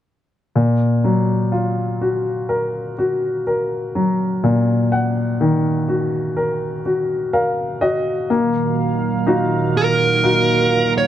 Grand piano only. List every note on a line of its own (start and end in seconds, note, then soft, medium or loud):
0.56 4.38 A#2 soft
1.04 2.93 F#3 soft
1.52 3.41 F4 soft
2.01 2.97 F#4 soft
2.49 3.45 A#4 soft
2.98 4.87 F#4 soft
3.47 5.36 A#4 soft
3.95 5.84 F#3 soft
4.44 8.26 A#2 soft
4.92 6.81 F#5 soft
5.41 7.29 D#3 soft
5.88 6.84 F#4 soft
6.37 7.32 A#4 soft
6.86 7.80 F#4 soft
7.33 8.27 A#4 soft
7.33 7.78 F5 soft
7.81 8.28 F#4 soft
7.81 8.26 D#5 soft
8.30 11.07 A#3 soft
9.27 10.20 D#4 soft
9.27 10.20 F4 soft
9.27 10.21 F#4 soft
10.23 11.07 D#4 soft
10.23 11.07 F4 soft
10.23 11.07 F#4 soft